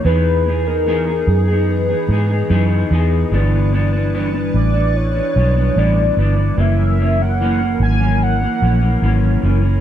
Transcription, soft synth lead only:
0.05 0.68 B4 loud
0.67 1.30 A#4 loud
1.29 1.71 G#4 medium
1.70 2.92 B4 medium
4.55 4.98 D5 medium
4.97 5.79 C#5 medium
5.78 6.61 D5 medium
6.60 7.23 E5 loud
7.22 7.82 F#5 loud
7.83 8.24 G#5 loud
8.23 9.45 F#5 loud

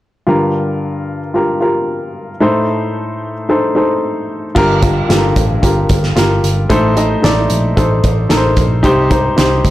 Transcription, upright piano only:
0.27 2.38 G2 medium
0.27 2.38 D3 soft
0.27 1.18 F4 medium
0.27 1.19 G4 medium
0.27 1.19 A#4 medium
1.34 1.57 F4 soft
1.34 1.58 G4 soft
1.34 1.58 A#4 medium
1.61 2.30 F4 medium
1.61 2.30 G4 soft
1.61 2.30 A#4 medium
2.40 4.52 A2 medium
2.40 4.52 A3 medium
2.40 3.33 D#4 medium
2.40 3.33 A4 medium
2.40 3.34 C5 medium
3.49 3.72 D#4 medium
3.49 3.72 A4 medium
3.49 3.73 C5 medium
3.75 4.44 D#4 medium
3.75 4.45 A4 medium
3.75 4.45 C5 medium
4.55 5.33 G2 medium
4.55 5.33 D3 medium
4.55 4.78 F4 medium
4.55 4.79 G4 medium
4.55 4.79 A#4 loud
4.82 5.05 F4 medium
4.82 5.06 G4 medium
4.82 5.06 A#4 medium
5.09 5.55 F4 medium
5.09 5.55 G4 medium
5.09 5.17 A4 medium
5.17 5.59 A#4 medium
5.62 6.09 F4 medium
5.62 6.09 G4 medium
5.62 6.10 A#4 medium
6.16 6.62 F4 medium
6.16 6.63 G4 medium
6.16 6.63 A#4 medium
6.69 7.47 A2 medium
6.69 7.47 A3 medium
6.69 6.93 D#4 medium
6.69 6.93 A4 medium
6.69 6.94 C5 loud
6.95 7.19 D#4 medium
6.95 7.20 A4 medium
6.95 7.20 D#5 medium
7.22 7.69 D#4 medium
7.22 7.69 A4 medium
7.22 7.70 D5 medium
7.76 8.23 D#4 medium
7.76 8.23 A4 medium
7.76 8.24 C5 medium
8.29 8.76 D#4 medium
8.29 8.76 A4 medium
8.29 8.38 A#4 medium
8.37 8.80 C5 medium
8.83 9.61 C3 medium
8.83 9.61 G3 medium
8.83 9.07 D#4 loud
8.83 9.07 G4 medium
8.83 9.07 C5 loud
9.10 9.34 D#4 medium
9.10 9.34 G4 medium
9.10 9.35 C5 medium
9.37 9.70 D#4 medium
9.37 9.70 G4 medium
9.37 9.70 C5 medium

